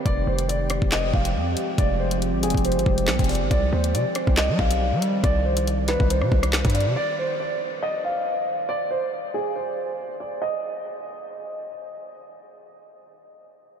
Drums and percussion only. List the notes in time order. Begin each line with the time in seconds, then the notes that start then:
0.06 kick, closed hi-hat
0.39 closed hi-hat
0.49 closed hi-hat
0.70 cross-stick, closed hi-hat
0.82 kick
0.92 snare, clap, closed hi-hat
1.14 kick
1.25 closed hi-hat
1.57 closed hi-hat
1.78 kick, closed hi-hat
2.11 closed hi-hat
2.22 closed hi-hat
2.43 closed hi-hat
2.50 closed hi-hat
2.55 kick, closed hi-hat
2.65 closed hi-hat
2.72 closed hi-hat
2.79 closed hi-hat
2.86 kick
2.98 closed hi-hat
3.08 snare, clap
3.19 kick, closed hi-hat
3.24 closed hi-hat
3.29 closed hi-hat, open hi-hat
3.35 closed hi-hat
3.51 kick, closed hi-hat
3.84 closed hi-hat
3.95 closed hi-hat
4.15 cross-stick, closed hi-hat
4.27 kick
4.37 snare, clap, closed hi-hat
4.59 kick
4.71 closed hi-hat
5.02 closed hi-hat
5.24 kick, closed hi-hat
5.57 closed hi-hat
5.67 closed hi-hat
5.88 snare, closed hi-hat
6.00 kick
6.10 closed hi-hat
6.22 cross-stick
6.32 kick
6.43 cross-stick, closed hi-hat
6.53 snare, clap
6.65 kick, closed hi-hat
6.70 closed hi-hat
6.75 closed hi-hat
6.81 closed hi-hat